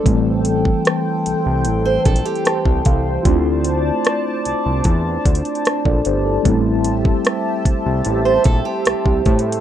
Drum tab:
HH |x-----------x-----------x-----------x-----------x-----------x--x--x--x--x-----------x-----------|x-----------x-----------x-----------x-----------x-----------x--x--x--x--x-----------x-----------|x-----------x-----------x-----------x-----------x-----------x-----------x-----------x---x---x---|
SD |------------------------r-----------------------------------------------r-----------------------|------------------------r-----------------------------------------------r-----------------------|------------------------r-----------------------------------------------r-----------------------|
BD |o-----------------o-----------------------------------------o-----------------o-----o-----------|o-----------------------------------------------o-----------o-----------------o-----------------|o-----------------o-----------------o-----------------------o-----------------o-----o-----------|